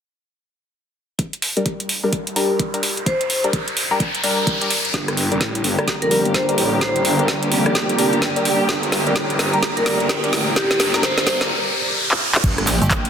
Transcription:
1.19 kick, closed hi-hat, riser
1.33 closed hi-hat
1.42 open hi-hat
1.57 synth stab G3 D4 A#4, closed hi-hat
1.66 kick, closed hi-hat
1.80 closed hi-hat
1.89 open hi-hat
2.04 synth stab G3 D4 A#4
2.13 kick, closed hi-hat
2.27 closed hi-hat
2.36 synth stab G3 D4 A#4, open hi-hat
2.59 kick, closed hi-hat
2.74 synth stab G3 D4 A#4, closed hi-hat
2.83 open hi-hat
2.97 closed hi-hat
3.06 vibraphone C5, kick, closed hi-hat
3.21 closed hi-hat
3.30 open hi-hat
3.44 synth stab G3 D4 A#4, closed hi-hat
3.53 kick, closed hi-hat
3.68 closed hi-hat
3.77 open hi-hat
3.91 synth stab G3 D4 A#4
4.00 kick, closed hi-hat
4.15 closed hi-hat
4.23 synth stab G3 D4 A#4, open hi-hat
4.47 kick, closed hi-hat
4.61 synth stab G3 D4 A#4, closed hi-hat
4.70 open hi-hat
4.85 closed hi-hat
4.94 detuned saw bass G1, string section D3 G3 A#3 G4, ambient pad G4, kick, snare, closed hi-hat, riser
5.08 cross-stick, closed hi-hat
5.15 ambient pad A#5, open hi-hat
5.32 detuned saw bass F1, synth stab G3 D4 A#4, closed hi-hat
5.41 detuned saw bass A1, kick, snare, closed hi-hat
5.55 closed hi-hat
5.64 detuned saw bass G1, open hi-hat
5.71 ambient pad D5
5.79 synth stab G3 D4 A#4, cross-stick, closed hi-hat
5.88 kick, snare, closed hi-hat
6.02 detuned saw bass F1, vibraphone A#4, closed hi-hat
6.11 synth stab G3 D4 A#4, open hi-hat
6.25 detuned saw bass G1, closed hi-hat
6.34 vibraphone C5, kick, snare, closed hi-hat
6.49 detuned saw bass G1, synth stab G3 D4 A#4, closed hi-hat
6.58 detuned saw bass A1, open hi-hat
6.81 vibraphone C5, kick, snare, closed hi-hat
6.96 closed hi-hat
7.05 detuned saw bass G1, open hi-hat
7.19 synth stab G3 D4 A#4, closed hi-hat
7.28 kick, snare, closed hi-hat
7.43 closed hi-hat
7.52 detuned saw bass F1, open hi-hat
7.66 synth stab G3 D4 A#4, cross-stick, closed hi-hat
7.75 kick, snare, closed hi-hat
7.89 detuned saw bass F1, closed hi-hat
7.98 synth stab G3 D4 A#4, open hi-hat
8.13 detuned saw bass G1, closed hi-hat
8.22 kick, snare, closed hi-hat
8.36 synth stab G3 D4 A#4, closed hi-hat
8.45 open hi-hat
8.69 detuned saw bass G1, kick, snare, closed hi-hat
8.83 closed hi-hat
8.92 snare, open hi-hat
9.07 detuned saw bass F1, synth stab G3 D4 A#4, closed hi-hat
9.16 detuned saw bass A1, kick, snare, closed hi-hat
9.30 closed hi-hat
9.39 detuned saw bass G1, snare, open hi-hat
9.53 synth stab G3 D4 A#4, closed hi-hat
9.63 kick, snare, closed hi-hat
9.77 detuned saw bass F1, vibraphone A#4, closed hi-hat
9.86 synth stab G3 D4 A#4, snare, open hi-hat
10.00 detuned saw bass G1, closed hi-hat
10.09 kick, snare, closed hi-hat
10.24 detuned saw bass G1, synth stab G3 D4 A#4, closed hi-hat
10.33 detuned saw bass A1, snare, open hi-hat
10.56 vibraphone G4, kick, snare, closed hi-hat
10.71 vibraphone G4, snare, closed hi-hat
10.80 detuned saw bass G1, snare, open hi-hat
10.94 synth stab G3 D4 A#4, snare, closed hi-hat
11.03 vibraphone C5, kick, snare, closed hi-hat
11.18 snare, closed hi-hat
11.27 detuned saw bass G1, kick, snare, open hi-hat
11.41 synth stab G3 D4 A#4, snare, closed hi-hat
12.11 clap
12.35 clap
12.44 detuned saw bass G1, string section D3 G3 A#3 G4, kick, closed hi-hat, crash, impact, shaker
12.58 cross-stick, closed hi-hat
12.67 detuned saw bass A#1, clap, open hi-hat, shaker
12.82 fm bass G1, closed hi-hat, shaker
12.91 kick, clap, closed hi-hat, shaker
13.05 closed hi-hat

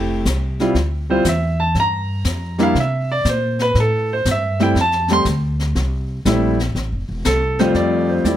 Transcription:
Already playing: upright bass F1, grand piano A3 C4 E4 G4
0.25 upright bass C2, kick, snare, hi-hat pedal
0.60 grand piano G3 C4 E4 F4, snare
0.75 upright bass D2, brush sweep, kick, snare
1.10 grand piano G3 C4 E4 F4 C5
1.25 upright bass E2, kick, snare, hi-hat pedal
1.29 grand piano E5
1.60 grand piano A5
1.75 upright bass G2, brush sweep, kick, snare
1.80 grand piano A#5
2.24 upright bass F2, kick, snare, hi-hat pedal
2.58 grand piano G3 A#3 D4 E4, snare
2.63 grand piano F5
2.75 upright bass C3, brush sweep, kick, snare
2.80 grand piano E5
3.12 grand piano D5
3.25 upright bass A#2, kick, snare, hi-hat pedal
3.29 grand piano C5
3.59 grand piano B4, snare
3.75 upright bass A2, brush sweep, kick, snare
3.80 grand piano A4
4.13 grand piano C5
4.25 upright bass G2, kick, snare, hi-hat pedal
4.31 grand piano E5
4.59 grand piano G3 A3 C4 E4 G5, snare
4.75 upright bass F2, brush sweep, kick, snare
4.81 grand piano A5
4.92 snare
5.08 grand piano G3 A3 C4 G4, snare
5.13 grand piano C6
5.25 upright bass D2, kick, snare, hi-hat pedal
5.59 snare
5.75 upright bass C2, brush sweep, kick, snare
6.25 upright bass A#1, grand piano G3 A3 C4 E4, kick, snare, hi-hat pedal
6.59 snare
6.75 upright bass A1, brush sweep, kick, snare
6.92 upright bass F1
7.09 upright bass E1
7.25 upright bass C2, grand piano A4, kick, snare, hi-hat pedal
7.59 grand piano F2 G3 A3 C4 F4 C5, snare
7.74 upright bass F2, grand piano D5, brush sweep, kick, snare
8.10 grand piano C5
8.24 upright bass E2, grand piano G3 A3 C4 E4 D5, kick, snare, hi-hat pedal

